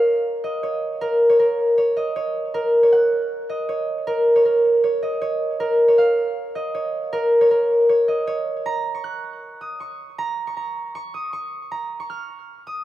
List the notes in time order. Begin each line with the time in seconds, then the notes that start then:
Already playing: A#4 C#5 D#5 F5
0.44 D#5
0.63 C#5
1.01 A#4
1.30 C#5
1.39 A#4
1.78 C#5
1.97 D#5
2.16 C#5
2.54 A#4
2.83 C#5
2.92 F#5
3.50 D#5
3.69 C#5
4.07 A#4
4.36 C#5
4.45 A#4
4.84 C#5
5.03 D#5
5.21 C#5
5.60 A#4
5.88 C#5
5.98 F5
6.55 D#5
6.75 C#5
7.13 A#4
7.41 C#5
7.51 A#4
7.89 C#5
8.08 D#5
8.27 C#5
8.66 A#5
8.95 C#6
9.04 F#6
9.61 D#6
9.80 C#6
10.18 A#5
10.47 C#6
10.57 A#5
10.95 C#6
11.14 D#6
11.33 C#6
11.72 A#5
12.00 C#6
12.10 F6
12.67 D#6